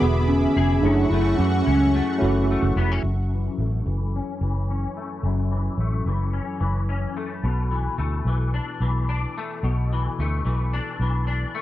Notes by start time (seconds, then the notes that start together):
Already playing: E3 B3 D4 G#4 E5 B5 D6
0.00 E1 D3 B3 F#4 G#4
0.27 C#4
0.56 F1 G#4
0.81 F#1 F#2 A3 C#4 D4 E4 F#4 F#5 C#6
0.85 C#4 G#4
1.09 F#1 A3 E4
1.37 F#2 E3 C#4
1.66 C#2 C#4
1.95 A3
2.19 F#1 A3 C#4 E4 F#4
2.23 E3
2.51 A3
2.62 F#1
2.76 F1 B3
2.92 C#4
3.03 F#1 F#2
3.34 E3
3.58 A1 A3
3.86 F#1 E3
4.16 C#4
4.41 F#1 E3
4.70 C#4
4.97 A3
5.23 F#1 F#2
5.51 E3
5.78 A1 A3
6.06 F#1 E3
6.33 C#4
6.60 F#1 E3
6.89 C#4
7.17 A3
7.44 B1 B2
7.71 E3
7.98 D2 A3
8.25 B1 E3
8.54 D4
8.80 B1 E3
9.09 D4
9.38 A3
9.63 B1 B2
9.93 E3
10.19 D2 A3
10.45 B1 E3
10.73 D4
11.00 B1 E3
11.27 D4
11.55 A3